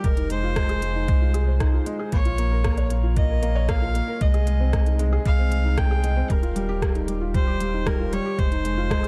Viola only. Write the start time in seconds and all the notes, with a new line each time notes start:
0.05 A#4
0.31 C5
2.13 C#5
3.17 D#5
3.69 F5
4.21 D#5
5.26 F5
5.78 G5
6.31 A#4
7.35 C5
7.87 A#4
8.13 C#5
8.39 C5